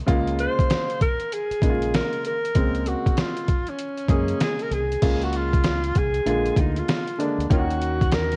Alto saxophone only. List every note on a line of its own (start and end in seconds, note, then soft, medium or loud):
0.40 0.97 C5 loud
1.02 1.35 A#4 loud
1.33 1.97 G#4 loud
1.96 2.25 A#4 loud
2.27 2.89 A#4 loud
2.88 3.21 F#4 medium
3.20 3.71 F4 medium
3.69 4.42 C#4 medium
4.44 4.64 G#4 loud
4.62 4.75 A#4 medium
4.74 5.25 G#4 medium
5.24 5.37 F#4 medium
5.36 5.99 F4 loud
5.98 6.61 G#4 loud
6.60 6.80 D#4 medium
6.79 7.20 F4 medium
7.52 8.15 F#4 medium
8.14 8.36 A#4 loud